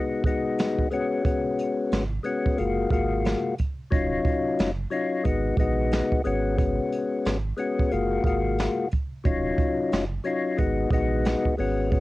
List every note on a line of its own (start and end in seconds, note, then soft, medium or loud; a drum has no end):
0.00 0.22 G#3 medium
0.00 0.23 B3 medium
0.00 0.23 D#4 medium
0.00 0.24 F#4 loud
0.24 0.88 G#3 medium
0.24 0.88 B3 medium
0.24 0.88 D#4 medium
0.24 0.89 F#4 loud
0.24 kick loud
0.24 closed hi-hat medium
0.58 snare loud
0.58 closed hi-hat medium
0.79 kick medium
0.91 1.22 G#3 medium
0.91 1.23 B3 medium
0.91 1.24 C#4 medium
0.91 1.24 F#4 medium
0.91 closed hi-hat medium
1.23 2.03 G#3 loud
1.23 2.04 B3 medium
1.23 2.04 C#4 medium
1.23 2.05 F#4 medium
1.23 kick loud
1.23 closed hi-hat medium
1.59 closed hi-hat medium
1.92 2.19 G#1 medium
1.92 snare loud
1.92 snare medium
1.92 closed hi-hat medium
2.23 2.56 G#3 medium
2.23 2.58 B3 medium
2.23 2.59 C#4 medium
2.23 2.58 F#4 medium
2.23 closed hi-hat medium
2.46 kick medium
2.57 2.86 F#1 loud
2.57 2.89 G#3 medium
2.57 2.90 A#3 medium
2.57 2.90 F4 medium
2.57 2.90 F#4 loud
2.57 closed hi-hat medium
2.90 3.35 G#1 medium
2.90 3.54 G#3 medium
2.90 3.54 A#3 medium
2.90 3.55 F4 medium
2.90 3.55 F#4 loud
2.90 kick loud
2.90 closed hi-hat medium
3.25 snare loud
3.25 snare medium
3.25 closed hi-hat medium
3.58 kick medium
3.58 closed hi-hat medium
3.90 4.19 D#1 loud
3.90 4.70 F#3 medium
3.90 4.71 C#4 medium
3.90 4.71 D#4 medium
3.90 4.72 F4 loud
3.90 kick loud
3.90 closed hi-hat medium
4.25 kick loud
4.25 closed hi-hat medium
4.59 4.86 F#1 loud
4.59 snare loud
4.59 snare medium
4.59 closed hi-hat medium
4.90 5.24 F#3 loud
4.90 5.25 C#4 medium
4.90 5.24 D#4 medium
4.90 5.26 F4 loud
4.90 closed hi-hat medium
5.24 5.52 G#1 loud
5.24 5.56 G#3 medium
5.24 5.56 B3 medium
5.24 5.57 D#4 medium
5.24 5.57 F#4 loud
5.24 kick medium
5.24 closed hi-hat medium
5.57 6.02 A#1 medium
5.57 6.21 G#3 medium
5.57 6.21 B3 medium
5.57 6.22 D#4 medium
5.57 6.22 F#4 loud
5.57 kick loud
5.57 closed hi-hat medium
5.92 snare loud
5.92 closed hi-hat medium
6.12 kick medium
6.24 6.80 G#1 loud
6.24 6.55 G#3 medium
6.24 6.56 B3 medium
6.24 6.57 C#4 medium
6.24 6.57 F#4 medium
6.24 closed hi-hat medium
6.56 7.36 G#3 medium
6.56 7.37 B3 medium
6.56 7.37 C#4 medium
6.56 7.38 F#4 medium
6.56 kick loud
6.56 closed hi-hat medium
6.92 closed hi-hat medium
7.25 7.53 G#1 medium
7.25 snare loud
7.25 snare medium
7.25 closed hi-hat medium
7.57 7.89 G#3 medium
7.57 7.91 B3 medium
7.57 7.92 C#4 medium
7.57 7.92 F#4 medium
7.57 closed hi-hat medium
7.79 kick medium
7.90 8.19 F#1 loud
7.90 8.22 G#3 medium
7.90 8.23 A#3 medium
7.90 8.23 F4 medium
7.90 8.24 F#4 loud
7.90 closed hi-hat medium
8.24 8.68 G#1 loud
8.24 8.87 G#3 medium
8.24 8.88 A#3 medium
8.24 8.88 F4 medium
8.24 8.89 F#4 loud
8.24 kick loud
8.24 closed hi-hat medium
8.58 snare loud
8.58 snare medium
8.58 closed hi-hat medium
8.91 kick medium
8.91 closed hi-hat medium
9.24 9.52 D#1 loud
9.24 10.04 F#3 medium
9.24 10.04 C#4 medium
9.24 10.05 D#4 medium
9.24 10.05 F4 loud
9.24 kick loud
9.24 closed hi-hat medium
9.58 kick loud
9.58 closed hi-hat medium
9.92 10.19 F#1 loud
9.92 snare loud
9.92 snare medium
9.92 closed hi-hat medium
10.24 10.58 F#3 medium
10.24 10.58 C#4 medium
10.24 10.58 D#4 medium
10.24 10.59 F4 loud
10.24 closed hi-hat medium
10.57 10.86 G#1 loud
10.57 10.89 G#3 medium
10.57 10.90 B3 medium
10.57 10.90 D#4 medium
10.57 10.90 F#4 loud
10.57 kick medium
10.57 closed hi-hat medium
10.91 11.35 A#1 medium
10.91 11.54 G#3 medium
10.91 11.55 B3 medium
10.91 11.55 D#4 medium
10.91 11.56 F#4 loud
10.91 kick loud
10.91 closed hi-hat medium
11.25 snare loud
11.25 closed hi-hat medium
11.45 kick medium
11.57 12.00 G#1 loud
11.57 11.88 G#3 medium
11.57 11.89 B3 medium
11.57 11.90 C#4 medium
11.57 11.91 F#4 medium
11.57 open hi-hat medium
11.90 12.00 G#3 medium
11.90 12.00 B3 medium
11.90 12.00 C#4 medium
11.90 12.00 F#4 medium
11.90 kick loud
11.90 closed hi-hat medium